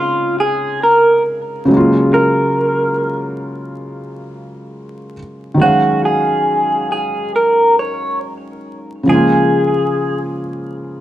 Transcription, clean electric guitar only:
Already playing: F4
0.40 G#4
0.83 A#4
2.14 A#4
5.62 F#4
6.05 G#4
6.92 G#4
7.36 A#4
7.79 C#5
9.09 G#4

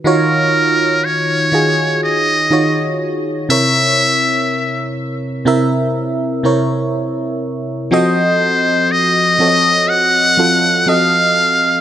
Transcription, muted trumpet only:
0.06 A#4
1.05 C#5
2.03 D#5
3.50 E5
7.93 C5
8.92 D#5
9.90 F#5
10.89 F5

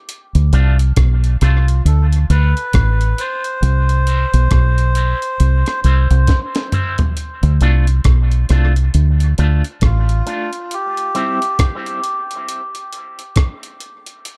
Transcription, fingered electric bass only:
0.35 D2
0.53 C2
0.97 B1
1.42 C2
1.85 D2
2.30 D2
2.74 A1
3.63 C2
4.34 B1
4.51 B1
5.40 C2
5.84 C2
6.11 C2
7.43 D2
7.61 C2
8.05 B1
8.50 C2
8.94 D2
9.39 D2
9.82 A1

